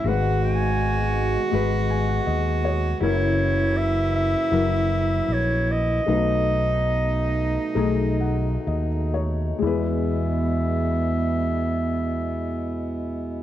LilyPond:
<<
  \new Staff \with { instrumentName = "Clarinet" } { \time 4/4 \key e \major \tempo 4 = 75 fis''8 gis''4. r2 | cis''4 e''8 e''4. cis''8 dis''8~ | dis''2. r4 | e''1 | }
  \new Staff \with { instrumentName = "Felt piano" } { \time 4/4 \key e \major << { r2 r8 gis''16 fis''16 dis''8 cis''8 | r1 | r2 r8 fis''8 dis''8 cis''8 | r1 | } \\ { <gis fis' b'>4~ <gis fis' b'>16 r8. <gis fis' b'>4~ <gis fis' b'>16 r8. | <fis e' ais'>4~ <fis e' ais'>16 r8. <fis e' ais'>4~ <fis e' ais'>16 r8. | <a dis' b'>4~ <a dis' b'>16 r8. <a dis' gis'>4~ <a dis' gis'>16 r8. | <gis e' b'>1 | } >> }
  \new Staff \with { instrumentName = "Felt piano" } { \clef bass \time 4/4 \key e \major <gis,, gis,>1 | <fis,, fis,>1 | <b,, b,>1 | e,1 | }
  \new Staff \with { instrumentName = "Cello" } { \time 4/4 \key e \major fis'1 | e'1 | dis'2.~ dis'8 r8 | b1 | }
  \new Staff \with { instrumentName = "Harmonium" } { \time 4/4 \key e \major fis'1~ | fis'1 | dis'1 | <b, gis e'>1 | }
  \new Staff \with { instrumentName = "Harmonium" } { \clef bass \time 4/4 \key e \major <b, gis>1 | <e ais>1 | <b, a>1 | r1 | }
  \new Staff \with { instrumentName = "Fingered electric bass" } { \clef bass \time 4/4 \key e \major gis,,2 gis,,4 dis,4 | fis,,2 fis,,4 ais,,4 | b,,2 b,,4 dis,4 | e,1 | }
>>